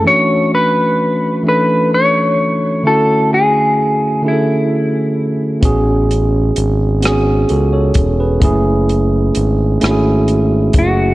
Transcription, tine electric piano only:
\new Staff \with { instrumentName = "Tine electric piano" } { \time 6/8 \key a \major \tempo 4. = 43 << { r2. | r2. | r2 <fis' a'>16 <a' cis''>8 <gis' b'>16~ | <gis' b'>16 r2 r8. | } \\ { <e a cis' d' fis'>4 r8 <e a cis' d' a'>4 r8 | <d a cis' e' fis'>4 r8 <d a cis' e' gis' a'>4 r8 | <b cis' fis' gis'>4 r8 <b cis' fis' gis'>4 r8 | <a cis' e' gis'>4 r8 <a cis' e' fis' gis'>4 r8 | } >> }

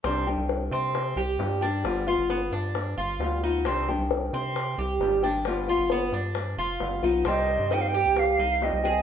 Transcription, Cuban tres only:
\new Staff \with { instrumentName = "Cuban tres" } { \time 4/4 \key c \minor \tempo 4 = 133 c'8 r4 c'4 g'4 d'8~ | d'8 f'8 b8 d'4 f'4 ees'8 | c'8 r4 c'4 g'4 d'8~ | d'8 f'8 b8 d'4 f'4 ees'8 |
c'4 ees'8 g'4 ees'4 aes'8 | }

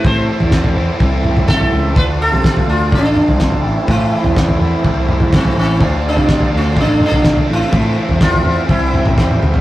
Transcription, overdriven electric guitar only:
\new Staff \with { instrumentName = "Overdriven electric guitar" } { \time 4/4 \key d \minor \tempo 4 = 125 <a, e a c' e'>8 <a c' e'>8 <e a c' e'>8 <a c' e'>8 <a, e a c' e'>8 <a c' e'>8 <e a c' e'>4 | <d a d' f'>8 <a d' f'>8 <d a d' f'>8 <a d' f'>8 <d a d' f'>8 <a d' f'>8 <d a d' f'>8 <a, e a c' e'>8 | <a, e a c' e'>8 <a c' e'>8 <e a c' e'>8 <a c' e'>8 <a, e a c' e'>8 <a c' e'>8 <e a c' e'>4 | <d a d' f'>8 <a d' f'>8 <d a d' f'>8 <a d' f'>8 <d a d' f'>8 <a d' f'>8 <d a d' f'>8 <a, e a c' e'>8 |
<a, e a c' e'>8 <a c' e'>8 <e a c' e'>8 <a c' e'>8 <c e g c' e'>8 <g c' e'>8 <e g c' e'>4 | }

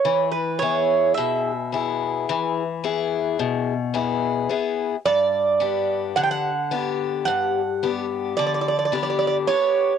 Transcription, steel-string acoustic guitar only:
\new Staff \with { instrumentName = "Steel-string acoustic guitar" } { \time 9/8 \key e \dorian \tempo 4. = 36 e8 <b e' gis'>8 b,8 <b e' gis'>8 e8 <b e' gis'>8 b,8 <b e' gis'>8 <b e' gis'>8 | g,8 <b d' g'>8 d8 <b d' g'>8 g,8 <b d' g'>8 d8 <b d' g'>8 <b d' g'>8 | }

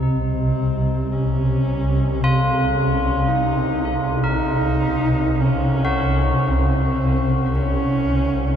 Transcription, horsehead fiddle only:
\new Staff \with { instrumentName = "Horsehead fiddle" } { \time 4/4 \tempo 4 = 56 c'4 des'4 c'8 des'8 ees'8. r16 | ees'4 des'4 c'4 des'4 | }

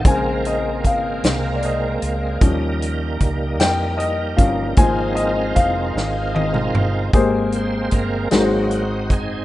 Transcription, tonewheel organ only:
<<
  \new Staff \with { instrumentName = "Tonewheel organ" } { \time 6/8 \key aes \major \tempo 4. = 51 << { bes'2.~ | bes'2.~ | bes'2. | r8 c''8 bes'8 ges'4 aes'8 | } \\ { <aes bes c'>2. | <g ees'>2. | <aes c' ees' f'>2. | r4. ees'4. | } >> }
  \new Staff \with { instrumentName = "Tonewheel organ" } { \time 6/8 \key aes \major r2. | r2. | r2. | <aes bes c'>4. <ges bes c'>8 r4 | }
>>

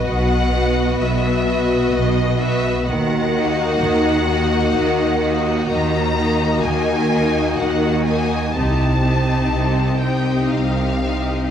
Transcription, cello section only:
\new Staff \with { instrumentName = "Cello section" } { \clef bass \time 3/4 \key dis \phrygian \tempo 4 = 64 b,4 b,4 b,4 | dis4 dis4 dis4 | dis4 dis4 dis4 | c4 c4 c4 | }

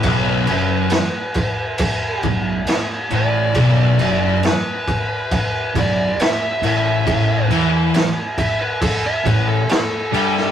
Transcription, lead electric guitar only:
\new Staff \with { instrumentName = "Lead electric guitar" } { \time 4/4 \key b \minor \tempo 4 = 68 b'2~ b'8 r4 d''8~ | d''4 b'4. d''8 e''8 e''8~ | e''8 r4 e''16 b'16 a'16 e''16 b'16 a'16 a'4 | }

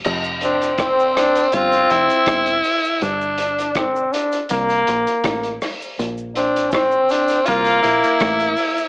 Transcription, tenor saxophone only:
\new Staff \with { instrumentName = "Tenor saxophone" } { \time 4/4 \key f \major \tempo 4 = 81 r8 c'8 c'4 f'8 e'4. | d'4 r2. | r8 c'8 c'4 f'8 e'4. | }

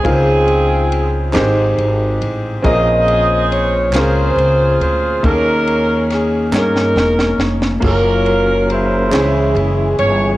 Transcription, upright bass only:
\new Staff \with { instrumentName = "Upright bass" } { \clef bass \time 6/8 \key ees \mixolydian \tempo 4. = 46 des,4. aes,,8 aes,,8 a,,8 | bes,,4. des,8 des,8 d,8 | ees,4. g,8 fes,,8 f,,8 | ges,,4. des,8 ges,,8 g,,8 | }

